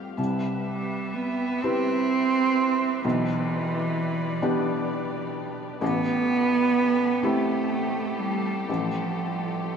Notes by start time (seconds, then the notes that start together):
Already playing: A3 C4 F4 G4 F5
0.17 C2 G4 B4 E5
0.66 G3
1.14 B3
1.63 C4 E4 G4 B4
3.03 B1 E3 D5
4.42 B3 D4 G4
5.81 A1 A3 B3 G4 A4
7.23 A3 C4 E4 G4
8.19 G3
8.69 A1 F3